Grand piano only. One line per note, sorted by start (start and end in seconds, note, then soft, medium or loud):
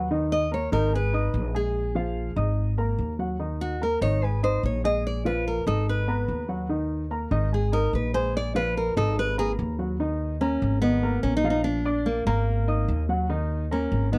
0.11 0.44 D#3 medium
0.11 0.44 D#4 medium
0.11 0.45 D#5 medium
0.51 0.68 A#3 medium
0.51 0.68 A#4 medium
0.51 0.69 A#5 medium
0.72 0.89 D#3 medium
0.72 0.89 D#4 loud
0.72 0.89 D#5 medium
0.93 1.10 G#3 medium
0.93 1.10 G#4 medium
0.93 1.10 G#5 medium
1.13 1.47 D#4 medium
1.13 1.47 D#5 medium
1.13 1.48 D#6 medium
1.54 1.88 G#3 medium
1.54 1.88 G#4 medium
1.54 1.88 G#5 medium
1.95 2.29 F3 medium
1.95 2.29 F4 medium
1.95 2.30 F5 medium
2.36 2.70 D#4 medium
2.36 2.71 D#5 medium
2.36 2.71 D#6 medium
2.78 3.12 A#3 medium
2.78 3.12 A#4 medium
2.78 3.12 A#5 medium
3.19 3.36 F#3 medium
3.19 3.36 F#4 medium
3.19 3.36 F#5 medium
3.39 3.73 D#3 medium
3.39 3.73 D#4 medium
3.39 3.74 D#5 medium
3.81 3.98 A#3 medium
3.81 3.98 A#4 medium
3.81 3.98 A#5 medium
4.01 4.18 D#3 medium
4.01 4.18 D#4 medium
4.01 4.19 D#5 medium
4.22 4.39 G#3 medium
4.22 4.39 G#4 medium
4.22 4.40 G#5 medium
4.43 4.77 D#4 medium
4.43 4.77 D#5 medium
4.43 4.77 D#6 medium
4.84 5.18 G#3 medium
4.84 5.18 G#4 medium
4.84 5.18 G#5 medium
5.25 5.59 F3 medium
5.25 5.59 F4 medium
5.25 5.59 F5 medium
5.67 6.00 D#4 medium
5.67 6.01 D#5 medium
5.67 6.01 D#6 medium
6.08 6.41 B3 medium
6.08 6.42 B4 medium
6.08 6.42 A#5 medium
6.48 6.66 F#3 medium
6.48 6.66 F#4 medium
6.48 6.66 F#5 medium
6.69 7.03 D#3 medium
6.69 7.03 D#4 medium
6.69 7.04 D#5 medium
7.11 7.28 A#3 medium
7.11 7.28 A#4 medium
7.11 7.28 A#5 medium
7.31 7.48 D#3 medium
7.31 7.48 D#4 medium
7.31 7.49 D#5 loud
7.52 7.69 G#3 medium
7.52 7.69 G#4 medium
7.52 7.69 G#5 medium
7.72 8.06 D#4 medium
7.72 8.06 D#5 medium
7.72 8.07 D#6 medium
8.14 8.48 G#3 medium
8.14 8.48 G#4 medium
8.14 8.48 G#5 medium
8.55 8.89 F3 medium
8.55 8.89 F4 medium
8.55 8.89 F5 medium
8.97 9.30 D#4 medium
8.97 9.30 D#5 medium
8.97 9.31 D#6 medium
9.37 9.71 A#3 medium
9.37 9.72 A#4 medium
9.37 9.72 A#5 medium
9.79 9.96 F#3 medium
9.79 9.96 F#4 medium
9.79 9.96 F#5 medium
10.00 10.34 D#3 medium
10.00 10.34 D#4 medium
10.00 10.34 D#5 medium
10.41 10.75 A#3 medium
10.41 10.75 A#4 medium
10.41 10.75 A#5 medium
10.82 10.99 D#3 medium
10.82 10.99 D#4 medium
10.82 10.99 D#5 medium
11.03 11.37 A#3 medium
11.03 11.37 A#4 medium
11.03 11.37 A#5 medium
11.44 11.78 F3 medium
11.44 11.78 F4 medium
11.44 11.78 F5 medium
11.85 12.19 D4 medium
11.85 12.19 D5 medium
11.85 12.19 D6 medium
12.27 12.60 A#3 medium
12.27 12.61 A#4 medium
12.27 12.61 A#5 medium
12.68 13.02 D#4 medium
12.68 13.02 D#5 medium
12.68 13.02 D#6 medium
13.09 13.26 F#3 medium
13.09 13.26 F#4 medium
13.09 13.26 F#5 medium
13.29 13.63 D#3 medium
13.29 13.63 D#4 medium
13.29 13.64 D#5 medium
13.71 14.05 A#3 medium
13.71 14.05 A#4 medium
13.71 14.05 A#5 medium
14.12 14.18 D#3 medium
14.12 14.18 D#4 medium
14.12 14.18 D#5 medium